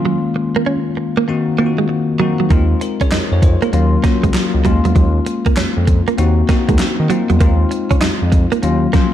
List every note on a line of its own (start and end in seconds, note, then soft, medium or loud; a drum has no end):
0.00 0.75 D#3 medium
0.00 0.75 G#3 medium
0.00 0.75 A#3 medium
0.00 0.75 C#4 medium
0.00 0.75 F4 loud
0.05 0.17 F#3 medium
0.36 muted clean electric guitar stroke soft
0.56 0.62 A#3 medium
0.66 0.78 C#4 medium
0.97 muted clean electric guitar stroke soft
1.17 1.24 A#3 medium
1.28 1.54 D#3 medium
1.28 1.54 A#3 medium
1.28 1.55 C4 medium
1.28 1.55 D#4 medium
1.28 1.55 F#4 loud
1.28 muted clean electric guitar stroke soft
1.58 2.11 D#3 medium
1.58 1.70 A#3 medium
1.58 2.11 A#3 medium
1.58 2.11 C4 medium
1.58 2.11 D#4 medium
1.58 1.68 F4 medium
1.66 2.15 F#4 medium
1.78 1.85 G#3 medium
1.89 muted clean electric guitar stroke soft
2.20 2.46 D#3 medium
2.20 2.31 F#3 medium
2.20 2.46 A#3 medium
2.20 2.46 C4 medium
2.20 2.47 D#4 medium
2.20 2.47 F#4 medium
2.40 2.46 F#3 medium
2.50 2.74 D#2 loud
2.50 3.48 G#3 medium
2.50 2.62 A#3 medium
2.50 3.49 C4 medium
2.50 3.49 D#4 medium
2.50 2.82 F4 medium
2.50 kick loud
2.50 closed hi-hat medium
2.81 3.01 F4 soft
2.81 3.01 A#4 medium
2.81 muted clean electric guitar stroke soft
2.81 closed hi-hat medium
3.01 3.05 F2 soft
3.01 3.07 C#4 medium
3.01 3.12 G#4 medium
3.01 3.12 C#5 medium
3.01 kick medium
3.01 closed hi-hat soft
3.11 3.20 F2 soft
3.11 3.24 D#4 medium
3.11 3.32 A#4 medium
3.11 3.31 D#5 medium
3.11 snare loud
3.11 clap medium
3.11 closed hi-hat medium
3.32 3.56 F2 medium
3.32 3.43 G#4 medium
3.32 3.42 C#5 medium
3.42 3.62 F4 medium
3.42 3.62 C5 medium
3.42 muted clean electric guitar stroke soft
3.42 kick loud
3.42 closed hi-hat medium
3.62 3.69 A#3 medium
3.62 3.73 F4 medium
3.62 3.92 A#4 medium
3.62 closed hi-hat medium
3.73 3.97 D#2 loud
3.73 3.99 F#3 loud
3.73 3.99 A#3 medium
3.73 4.00 C#4 medium
3.73 4.00 F4 loud
3.73 muted clean electric guitar stroke soft
3.73 closed hi-hat medium
4.03 4.56 F#3 medium
4.03 4.15 A#3 medium
4.03 4.56 A#3 medium
4.03 4.56 C#4 medium
4.03 4.56 F#4 medium
4.03 kick medium
4.03 snare medium
4.03 closed hi-hat medium
4.23 4.32 C#2 medium
4.23 4.30 G#3 medium
4.23 kick medium
4.23 closed hi-hat medium
4.34 muted clean electric guitar stroke soft
4.34 snare loud
4.34 clap medium
4.34 closed hi-hat medium
4.54 4.63 C#2 medium
4.65 4.80 D#2 loud
4.65 4.77 F#3 medium
4.65 5.65 G#3 medium
4.65 5.65 A#3 medium
4.65 5.65 C#4 medium
4.65 5.65 F4 loud
4.65 kick medium
4.65 closed hi-hat medium
4.85 4.93 E2 medium
4.85 4.91 F#3 medium
4.85 closed hi-hat medium
4.96 5.20 D#2 loud
4.96 5.07 F#3 medium
4.96 kick loud
4.96 closed hi-hat medium
5.26 muted clean electric guitar stroke soft
5.26 closed hi-hat medium
5.46 5.50 F2 soft
5.46 5.52 A#3 medium
5.46 kick medium
5.46 closed hi-hat soft
5.57 5.65 F2 soft
5.57 5.69 C#4 medium
5.57 snare loud
5.57 clap loud
5.57 closed hi-hat medium
5.77 6.01 F2 medium
5.87 muted clean electric guitar stroke soft
5.87 kick loud
5.87 closed hi-hat medium
6.08 6.14 A#3 medium
6.08 closed hi-hat medium
6.18 6.42 D#2 loud
6.18 6.44 A#3 medium
6.18 6.44 C4 medium
6.18 6.45 D#4 medium
6.18 6.45 F#4 loud
6.18 muted clean electric guitar stroke soft
6.18 closed hi-hat medium
6.48 7.01 A#3 medium
6.48 6.61 A#3 medium
6.48 7.01 C4 medium
6.48 7.01 D#4 medium
6.48 7.01 F#4 medium
6.48 kick medium
6.48 snare medium
6.48 closed hi-hat medium
6.69 6.77 D#2 medium
6.69 6.75 G#3 medium
6.69 kick medium
6.69 closed hi-hat medium
6.79 muted clean electric guitar stroke soft
6.79 snare loud
6.79 clap medium
6.79 closed hi-hat medium
7.00 7.08 D#3 loud
7.10 7.21 F#3 medium
7.10 7.36 A#3 medium
7.10 7.36 C4 medium
7.10 7.36 D#4 medium
7.10 7.36 F4 medium
7.10 closed hi-hat medium
7.30 7.38 E2 medium
7.30 7.36 F#3 medium
7.30 closed hi-hat medium
7.40 7.64 D#2 loud
7.40 8.38 G#3 medium
7.40 7.52 A#3 medium
7.40 8.39 C4 medium
7.40 8.39 D#4 medium
7.40 8.39 F4 medium
7.40 kick loud
7.40 closed hi-hat medium
7.71 muted clean electric guitar stroke soft
7.71 closed hi-hat medium
7.91 7.95 F2 soft
7.91 7.97 C#4 medium
7.91 kick medium
7.91 closed hi-hat soft
8.01 8.10 F2 soft
8.01 8.13 D#4 medium
8.01 snare loud
8.01 clap medium
8.01 closed hi-hat medium
8.22 8.46 F2 medium
8.32 muted clean electric guitar stroke soft
8.32 kick medium
8.32 closed hi-hat medium
8.52 8.58 A#3 medium
8.52 closed hi-hat soft
8.63 8.87 D#2 loud
8.63 8.89 F#3 loud
8.63 8.89 A#3 medium
8.63 8.90 C#4 medium
8.63 8.90 F4 loud
8.63 muted clean electric guitar stroke soft
8.63 closed hi-hat medium
8.93 9.02 F3 medium
8.93 9.05 A#3 medium
8.93 9.14 A#3 medium
8.93 9.14 C#4 medium
8.93 9.14 F4 medium
8.93 kick medium
8.93 snare medium
8.93 closed hi-hat medium
9.00 9.14 F#3 medium